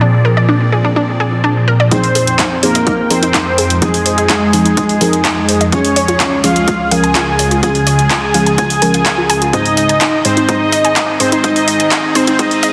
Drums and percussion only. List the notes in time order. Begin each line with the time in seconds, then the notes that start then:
1.91 kick, closed hi-hat
2.04 open hi-hat
2.15 open hi-hat
2.27 closed hi-hat
2.39 kick, clap, closed hi-hat
2.63 open hi-hat
2.75 closed hi-hat
2.87 kick, closed hi-hat
3.10 open hi-hat
3.23 closed hi-hat
3.34 kick, clap, closed hi-hat
3.58 open hi-hat
3.70 closed hi-hat
3.82 kick, closed hi-hat
3.94 open hi-hat
4.06 open hi-hat
4.18 closed hi-hat
4.29 kick, clap, closed hi-hat
4.53 open hi-hat
4.65 closed hi-hat
4.77 kick, closed hi-hat
4.89 open hi-hat
5.01 open hi-hat
5.13 closed hi-hat
5.25 kick, clap, closed hi-hat
5.49 open hi-hat
5.61 closed hi-hat
5.72 kick, closed hi-hat
5.85 open hi-hat
5.96 open hi-hat
6.08 closed hi-hat
6.20 kick, clap, closed hi-hat
6.44 open hi-hat
6.56 closed hi-hat
6.68 kick, closed hi-hat
6.91 open hi-hat
7.04 closed hi-hat
7.15 kick, clap, closed hi-hat
7.39 open hi-hat
7.51 closed hi-hat
7.63 kick, closed hi-hat
7.75 open hi-hat
7.87 open hi-hat
7.99 closed hi-hat
8.10 kick, clap, closed hi-hat
8.34 open hi-hat
8.46 closed hi-hat
8.58 kick, closed hi-hat
8.70 open hi-hat
8.82 open hi-hat
8.94 closed hi-hat
9.06 kick, clap, closed hi-hat
9.30 open hi-hat
9.42 closed hi-hat
9.53 kick, closed hi-hat
9.66 open hi-hat
9.77 open hi-hat
9.89 closed hi-hat
10.01 kick, clap, closed hi-hat
10.25 open hi-hat
10.37 closed hi-hat
10.49 kick, closed hi-hat
10.72 open hi-hat
10.85 closed hi-hat
10.96 kick, clap, closed hi-hat
11.20 open hi-hat
11.32 closed hi-hat
11.44 kick, closed hi-hat
11.56 open hi-hat
11.68 open hi-hat
11.80 closed hi-hat
11.91 kick, clap, closed hi-hat
12.15 open hi-hat
12.27 closed hi-hat
12.39 kick, closed hi-hat
12.51 open hi-hat
12.63 open hi-hat